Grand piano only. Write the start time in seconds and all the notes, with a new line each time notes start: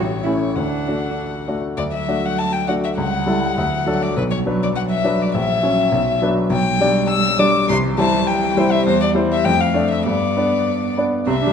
Already playing: A1
0.25 A3 C#4 E4
0.56 D2
0.87 A3 D4 F#4
1.48 A3 D4 F#4
1.78 D2
2.08 A3 D4 F#4
2.68 A3 D4 F#4
2.98 C#2
3.26 G3 E4 A4
3.58 D2
3.87 F#3 D4 A4
4.16 B1
4.46 F#3 D4 B4
5.04 F#3 D4 B4
5.34 A#1
5.63 F#3 C#4 C#5
5.92 B1
6.22 F#3 D4 B4
6.50 B1
6.81 G3 D4 D5
7.39 G3 D4 D5
7.70 C2
7.98 G3 E4 C5
8.57 G3 E4 C5
8.86 E2
9.15 G3 E4 C5
9.45 F2
9.74 A3 D4 D5
10.06 G2
10.37 B3 D4 D5
10.97 B3 D4 D5
11.27 C2
11.47 G3